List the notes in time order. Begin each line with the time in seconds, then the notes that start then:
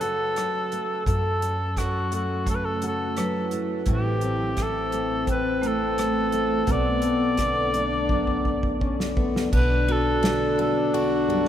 Already playing: F#2 C#3 F#3 A3 C#4 A4 C#5
0.01 F#4 A4, closed hi-hat
0.36 F#3, cross-stick, closed hi-hat
0.72 A3, closed hi-hat
1.06 F#2 A3 A4, kick, closed hi-hat
1.42 C#4, closed hi-hat
1.76 F#3 F#4, kick, cross-stick, closed hi-hat
2.12 A3 F#4, closed hi-hat
2.46 C#3 A3 C#4 A4, kick, closed hi-hat
2.55 B4
2.65 A4
2.82 F#4, closed hi-hat
2.87 A4
3.17 F#3 B4, cross-stick, closed hi-hat
3.40 E4
3.51 A3, closed hi-hat
3.86 A1 A2 E3 A3 C4 E4, kick, closed hi-hat
3.94 G4
4.21 C4, closed hi-hat
4.57 E3, kick, cross-stick, closed hi-hat
4.62 A4
4.92 A3, closed hi-hat
5.27 E2 C4, kick, closed hi-hat
5.31 B4
5.61 A3 E4, closed hi-hat
5.67 A4
5.98 E3, cross-stick, closed hi-hat
6.32 A3, closed hi-hat
6.67 B1 B2 A3 B3, kick, closed hi-hat
6.71 D5
7.02 B3, closed hi-hat
7.37 D3 B3, kick, cross-stick, closed hi-hat
7.74 A3 D4, closed hi-hat
8.09 F#2 B3, kick
8.27 kick
8.45 kick
8.63 kick
8.80 D3 C#4, kick
9.00 snare
9.16 A3 B3, kick
9.36 snare
9.52 B1 B2 D4 B4, kick, crash
9.88 B3 F#4 A4, ride
10.12 A4
10.23 D3 A3, snare, ride
10.58 B3 A4, ride
10.93 D4 F#4, ride
11.27 F#2 G3, ride